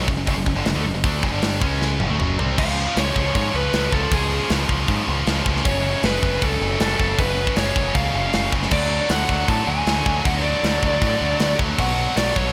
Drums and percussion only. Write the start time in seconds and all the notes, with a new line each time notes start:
0.08 kick
0.27 kick, open hi-hat
0.46 kick
0.65 snare, open hi-hat
1.04 kick, open hi-hat
1.23 kick
1.42 snare, open hi-hat
1.62 kick
1.82 snare
2.00 high tom
2.20 mid tom
2.39 floor tom
2.58 kick, crash
2.97 snare, open hi-hat
3.16 kick
3.35 kick, open hi-hat
3.73 snare, open hi-hat
3.92 kick
4.12 kick, open hi-hat
4.50 snare, open hi-hat
4.69 kick
4.88 kick, open hi-hat
5.27 snare, open hi-hat
5.46 kick
5.56 snare
5.65 kick, open hi-hat
6.03 snare, open hi-hat
6.23 kick
6.42 kick, open hi-hat
6.80 snare, open hi-hat
7.00 kick
7.19 kick, open hi-hat
7.47 kick
7.56 snare, open hi-hat
7.76 kick
7.95 kick, open hi-hat
8.33 snare, open hi-hat
8.52 kick
8.62 snare
8.71 kick, crash
9.09 snare, open hi-hat
9.29 kick
9.48 kick, open hi-hat
9.87 snare, open hi-hat
10.06 kick
10.25 kick, open hi-hat
10.64 snare, open hi-hat
10.83 kick
11.02 kick, open hi-hat
11.40 snare, open hi-hat
11.59 kick
11.79 kick, open hi-hat
12.17 snare, open hi-hat
12.36 kick